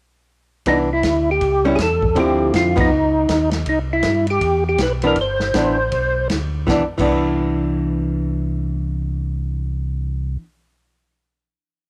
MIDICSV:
0, 0, Header, 1, 5, 480
1, 0, Start_track
1, 0, Key_signature, 0, "major"
1, 0, Tempo, 376884
1, 846, Time_signature, 4, 2, 24, 8
1, 15143, End_track
2, 0, Start_track
2, 0, Title_t, "Tonewheel organ"
2, 0, Program_c, 0, 16
2, 871, Note_on_c, 0, 63, 75
2, 1001, Note_off_c, 0, 63, 0
2, 1184, Note_on_c, 0, 64, 83
2, 1658, Note_off_c, 0, 64, 0
2, 1671, Note_on_c, 0, 67, 92
2, 2094, Note_off_c, 0, 67, 0
2, 2236, Note_on_c, 0, 68, 57
2, 2290, Note_off_c, 0, 68, 0
2, 2317, Note_on_c, 0, 69, 73
2, 2789, Note_off_c, 0, 69, 0
2, 2798, Note_on_c, 0, 67, 83
2, 3222, Note_off_c, 0, 67, 0
2, 3258, Note_on_c, 0, 65, 77
2, 3527, Note_off_c, 0, 65, 0
2, 3572, Note_on_c, 0, 63, 77
2, 4457, Note_off_c, 0, 63, 0
2, 4701, Note_on_c, 0, 63, 84
2, 4829, Note_off_c, 0, 63, 0
2, 5006, Note_on_c, 0, 64, 94
2, 5432, Note_off_c, 0, 64, 0
2, 5481, Note_on_c, 0, 67, 96
2, 5908, Note_off_c, 0, 67, 0
2, 5971, Note_on_c, 0, 67, 80
2, 6128, Note_off_c, 0, 67, 0
2, 6147, Note_on_c, 0, 71, 84
2, 6272, Note_off_c, 0, 71, 0
2, 6454, Note_on_c, 0, 70, 90
2, 6609, Note_off_c, 0, 70, 0
2, 6635, Note_on_c, 0, 72, 89
2, 7995, Note_off_c, 0, 72, 0
2, 15143, End_track
3, 0, Start_track
3, 0, Title_t, "Hollow-body jazz guitar"
3, 0, Program_c, 1, 26
3, 852, Note_on_c, 1, 52, 49
3, 856, Note_on_c, 1, 59, 56
3, 867, Note_on_c, 1, 62, 58
3, 1121, Note_off_c, 1, 52, 0
3, 1123, Note_off_c, 1, 59, 0
3, 1128, Note_off_c, 1, 62, 0
3, 2101, Note_on_c, 1, 55, 56
3, 2105, Note_on_c, 1, 61, 58
3, 2121, Note_on_c, 1, 64, 58
3, 2260, Note_off_c, 1, 55, 0
3, 2262, Note_off_c, 1, 61, 0
3, 2270, Note_off_c, 1, 64, 0
3, 2745, Note_on_c, 1, 50, 55
3, 2755, Note_on_c, 1, 53, 53
3, 2755, Note_on_c, 1, 60, 53
3, 2761, Note_on_c, 1, 64, 59
3, 3469, Note_off_c, 1, 50, 0
3, 3474, Note_off_c, 1, 53, 0
3, 3474, Note_off_c, 1, 60, 0
3, 3476, Note_off_c, 1, 64, 0
3, 3512, Note_on_c, 1, 53, 59
3, 3519, Note_on_c, 1, 59, 58
3, 3525, Note_on_c, 1, 63, 62
3, 3681, Note_off_c, 1, 53, 0
3, 3685, Note_off_c, 1, 59, 0
3, 3688, Note_off_c, 1, 63, 0
3, 6414, Note_on_c, 1, 52, 51
3, 6414, Note_on_c, 1, 59, 55
3, 6426, Note_on_c, 1, 62, 55
3, 6566, Note_off_c, 1, 52, 0
3, 6566, Note_off_c, 1, 59, 0
3, 6572, Note_off_c, 1, 62, 0
3, 7057, Note_on_c, 1, 52, 48
3, 7068, Note_on_c, 1, 59, 56
3, 7072, Note_on_c, 1, 62, 49
3, 7330, Note_off_c, 1, 52, 0
3, 7335, Note_off_c, 1, 59, 0
3, 7337, Note_off_c, 1, 62, 0
3, 8491, Note_on_c, 1, 52, 60
3, 8508, Note_on_c, 1, 59, 61
3, 8529, Note_on_c, 1, 62, 62
3, 8677, Note_off_c, 1, 52, 0
3, 8685, Note_off_c, 1, 59, 0
3, 8696, Note_off_c, 1, 62, 0
3, 8886, Note_on_c, 1, 52, 53
3, 8917, Note_on_c, 1, 59, 53
3, 8929, Note_on_c, 1, 62, 55
3, 13256, Note_off_c, 1, 52, 0
3, 13287, Note_off_c, 1, 59, 0
3, 13299, Note_off_c, 1, 62, 0
3, 15143, End_track
4, 0, Start_track
4, 0, Title_t, "Tonewheel organ"
4, 0, Program_c, 2, 16
4, 839, Note_on_c, 2, 36, 64
4, 1306, Note_off_c, 2, 36, 0
4, 1313, Note_on_c, 2, 38, 75
4, 1782, Note_off_c, 2, 38, 0
4, 1793, Note_on_c, 2, 37, 74
4, 2260, Note_off_c, 2, 37, 0
4, 2269, Note_on_c, 2, 40, 77
4, 2737, Note_off_c, 2, 40, 0
4, 2742, Note_on_c, 2, 38, 68
4, 3211, Note_off_c, 2, 38, 0
4, 3223, Note_on_c, 2, 41, 74
4, 3691, Note_off_c, 2, 41, 0
4, 3693, Note_on_c, 2, 37, 74
4, 4164, Note_off_c, 2, 37, 0
4, 4186, Note_on_c, 2, 39, 79
4, 4650, Note_off_c, 2, 39, 0
4, 4662, Note_on_c, 2, 36, 67
4, 5127, Note_off_c, 2, 36, 0
4, 5135, Note_on_c, 2, 43, 82
4, 5602, Note_off_c, 2, 43, 0
4, 5614, Note_on_c, 2, 40, 75
4, 6081, Note_off_c, 2, 40, 0
4, 6091, Note_on_c, 2, 35, 87
4, 6559, Note_off_c, 2, 35, 0
4, 6569, Note_on_c, 2, 31, 72
4, 7038, Note_off_c, 2, 31, 0
4, 7055, Note_on_c, 2, 33, 73
4, 7522, Note_off_c, 2, 33, 0
4, 7537, Note_on_c, 2, 35, 72
4, 8003, Note_off_c, 2, 35, 0
4, 8017, Note_on_c, 2, 38, 80
4, 8484, Note_off_c, 2, 38, 0
4, 8501, Note_on_c, 2, 36, 72
4, 8669, Note_off_c, 2, 36, 0
4, 8890, Note_on_c, 2, 36, 79
4, 13209, Note_off_c, 2, 36, 0
4, 15143, End_track
5, 0, Start_track
5, 0, Title_t, "Drums"
5, 838, Note_on_c, 9, 51, 51
5, 842, Note_on_c, 9, 36, 16
5, 965, Note_off_c, 9, 51, 0
5, 969, Note_off_c, 9, 36, 0
5, 1312, Note_on_c, 9, 44, 50
5, 1312, Note_on_c, 9, 51, 56
5, 1317, Note_on_c, 9, 38, 54
5, 1319, Note_on_c, 9, 36, 20
5, 1440, Note_off_c, 9, 44, 0
5, 1440, Note_off_c, 9, 51, 0
5, 1445, Note_off_c, 9, 38, 0
5, 1446, Note_off_c, 9, 36, 0
5, 1795, Note_on_c, 9, 51, 55
5, 1798, Note_on_c, 9, 36, 24
5, 1922, Note_off_c, 9, 51, 0
5, 1925, Note_off_c, 9, 36, 0
5, 2272, Note_on_c, 9, 44, 54
5, 2272, Note_on_c, 9, 51, 55
5, 2275, Note_on_c, 9, 36, 19
5, 2277, Note_on_c, 9, 38, 58
5, 2399, Note_off_c, 9, 44, 0
5, 2399, Note_off_c, 9, 51, 0
5, 2403, Note_off_c, 9, 36, 0
5, 2404, Note_off_c, 9, 38, 0
5, 2577, Note_on_c, 9, 36, 52
5, 2704, Note_off_c, 9, 36, 0
5, 2749, Note_on_c, 9, 51, 48
5, 2752, Note_on_c, 9, 36, 17
5, 2876, Note_off_c, 9, 51, 0
5, 2880, Note_off_c, 9, 36, 0
5, 3229, Note_on_c, 9, 44, 43
5, 3229, Note_on_c, 9, 51, 58
5, 3232, Note_on_c, 9, 36, 19
5, 3234, Note_on_c, 9, 38, 59
5, 3356, Note_off_c, 9, 44, 0
5, 3356, Note_off_c, 9, 51, 0
5, 3359, Note_off_c, 9, 36, 0
5, 3362, Note_off_c, 9, 38, 0
5, 3534, Note_on_c, 9, 36, 78
5, 3534, Note_on_c, 9, 51, 69
5, 3661, Note_off_c, 9, 51, 0
5, 3662, Note_off_c, 9, 36, 0
5, 4186, Note_on_c, 9, 44, 52
5, 4186, Note_on_c, 9, 51, 64
5, 4187, Note_on_c, 9, 36, 19
5, 4191, Note_on_c, 9, 38, 58
5, 4314, Note_off_c, 9, 36, 0
5, 4314, Note_off_c, 9, 44, 0
5, 4314, Note_off_c, 9, 51, 0
5, 4319, Note_off_c, 9, 38, 0
5, 4475, Note_on_c, 9, 51, 42
5, 4480, Note_on_c, 9, 38, 49
5, 4602, Note_off_c, 9, 51, 0
5, 4607, Note_off_c, 9, 38, 0
5, 4661, Note_on_c, 9, 51, 52
5, 4662, Note_on_c, 9, 36, 15
5, 4788, Note_off_c, 9, 51, 0
5, 4789, Note_off_c, 9, 36, 0
5, 5128, Note_on_c, 9, 44, 47
5, 5128, Note_on_c, 9, 51, 57
5, 5133, Note_on_c, 9, 38, 60
5, 5138, Note_on_c, 9, 36, 21
5, 5255, Note_off_c, 9, 44, 0
5, 5255, Note_off_c, 9, 51, 0
5, 5260, Note_off_c, 9, 38, 0
5, 5266, Note_off_c, 9, 36, 0
5, 5436, Note_on_c, 9, 51, 41
5, 5563, Note_off_c, 9, 51, 0
5, 5617, Note_on_c, 9, 51, 53
5, 5619, Note_on_c, 9, 36, 23
5, 5745, Note_off_c, 9, 51, 0
5, 5746, Note_off_c, 9, 36, 0
5, 6092, Note_on_c, 9, 44, 57
5, 6092, Note_on_c, 9, 51, 62
5, 6097, Note_on_c, 9, 38, 62
5, 6098, Note_on_c, 9, 36, 18
5, 6220, Note_off_c, 9, 44, 0
5, 6220, Note_off_c, 9, 51, 0
5, 6225, Note_off_c, 9, 36, 0
5, 6225, Note_off_c, 9, 38, 0
5, 6391, Note_on_c, 9, 51, 42
5, 6518, Note_off_c, 9, 51, 0
5, 6568, Note_on_c, 9, 51, 52
5, 6575, Note_on_c, 9, 36, 17
5, 6695, Note_off_c, 9, 51, 0
5, 6703, Note_off_c, 9, 36, 0
5, 6877, Note_on_c, 9, 38, 42
5, 7005, Note_off_c, 9, 38, 0
5, 7053, Note_on_c, 9, 44, 54
5, 7053, Note_on_c, 9, 51, 52
5, 7059, Note_on_c, 9, 38, 56
5, 7061, Note_on_c, 9, 36, 19
5, 7181, Note_off_c, 9, 44, 0
5, 7181, Note_off_c, 9, 51, 0
5, 7186, Note_off_c, 9, 38, 0
5, 7188, Note_off_c, 9, 36, 0
5, 7534, Note_on_c, 9, 51, 52
5, 7542, Note_on_c, 9, 36, 23
5, 7662, Note_off_c, 9, 51, 0
5, 7670, Note_off_c, 9, 36, 0
5, 8016, Note_on_c, 9, 44, 57
5, 8016, Note_on_c, 9, 51, 59
5, 8021, Note_on_c, 9, 38, 60
5, 8024, Note_on_c, 9, 36, 19
5, 8144, Note_off_c, 9, 44, 0
5, 8144, Note_off_c, 9, 51, 0
5, 8149, Note_off_c, 9, 38, 0
5, 8151, Note_off_c, 9, 36, 0
5, 8506, Note_on_c, 9, 36, 51
5, 8510, Note_on_c, 9, 38, 53
5, 8633, Note_off_c, 9, 36, 0
5, 8638, Note_off_c, 9, 38, 0
5, 8899, Note_on_c, 9, 36, 46
5, 8901, Note_on_c, 9, 49, 52
5, 9026, Note_off_c, 9, 36, 0
5, 9028, Note_off_c, 9, 49, 0
5, 15143, End_track
0, 0, End_of_file